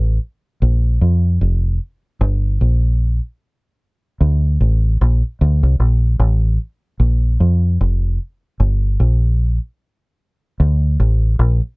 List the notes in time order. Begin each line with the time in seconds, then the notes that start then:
Already playing: A1
0.62 A#1
1.01 F2
1.41 F1
2.21 G1
2.61 A#1
4.21 D2
4.61 A1
5.01 A#1
5.41 D2
5.63 C2
5.80 A#1
6.19 A1
7.00 A#1
7.40 F2
7.81 F1
8.60 G1
9.00 A#1
10.60 D2
11.00 A1
11.39 A#1